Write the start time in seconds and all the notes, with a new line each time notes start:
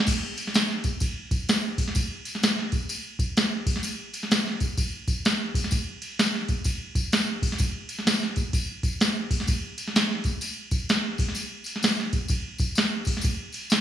0.07 kick, crash, ride, tambourine
0.37 ride, tambourine
0.47 snare
0.54 snare, ride, tambourine
0.71 snare
0.84 kick, ride, tambourine
1.00 kick, ride, tambourine
1.31 kick, ride, tambourine
1.49 snare, ride, tambourine
1.78 kick, open hi-hat, ride, tambourine
1.88 snare
1.95 kick, ride, tambourine
2.25 ride, tambourine
2.35 snare
2.43 snare, ride, tambourine
2.59 snare
2.72 kick, ride, tambourine
2.89 ride, tambourine
3.19 kick, ride, tambourine
3.37 snare, ride, tambourine
3.66 kick, open hi-hat, ride, tambourine
3.76 snare
3.83 ride, tambourine
4.13 ride, tambourine
4.23 snare
4.31 snare, ride, tambourine
4.48 snare
4.60 kick, ride, tambourine
4.78 kick, ride, tambourine
5.08 kick, ride, tambourine
5.25 snare, ride, tambourine
5.55 kick, open hi-hat, ride, tambourine
5.64 snare
5.71 kick, ride, tambourine
6.02 ride, tambourine
6.19 snare, ride, tambourine
6.35 snare
6.48 kick, ride, tambourine
6.64 kick, ride, tambourine
6.95 kick, ride, tambourine
7.13 snare, ride, tambourine
7.42 kick, open hi-hat, ride, tambourine
7.52 snare
7.59 kick, ride, tambourine
7.89 ride, tambourine
7.99 snare
8.07 snare, ride, tambourine
8.23 snare
8.36 kick, ride, tambourine
8.53 kick, ride, tambourine
8.83 kick, ride, tambourine
9.01 snare, ride, tambourine
9.31 kick, open hi-hat, ride, tambourine
9.40 snare
9.47 kick, ride, tambourine
9.78 ride, tambourine
9.88 snare
9.96 snare, ride, tambourine
10.11 snare
10.24 kick, ride, tambourine
10.41 ride, tambourine
10.71 kick, ride, tambourine
10.89 snare, ride, tambourine
11.18 kick, open hi-hat, ride, tambourine
11.28 snare
11.35 ride, tambourine
11.64 ride, tambourine
11.76 snare
11.83 snare, ride, tambourine
12.00 snare
12.13 kick, ride, tambourine
12.28 kick, ride, tambourine
12.58 kick, ride, tambourine
12.75 snare, ride, tambourine
13.05 kick, open hi-hat, ride, tambourine
13.17 snare
13.21 kick, ride, tambourine
13.52 ride, tambourine
13.70 snare, ride, tambourine